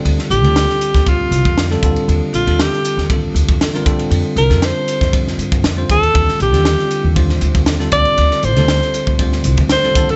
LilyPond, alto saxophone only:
\new Staff \with { instrumentName = "Alto saxophone" } { \time 4/4 \key d \phrygian \tempo 4 = 118 r8 g'4. f'4. r8 | r8 f'8 g'4 r2 | r8 bes'8 c''4 r4. a'8~ | a'8 g'4. r4. d''8~ |
d''8 c''4. r4 c''8. a'16 | }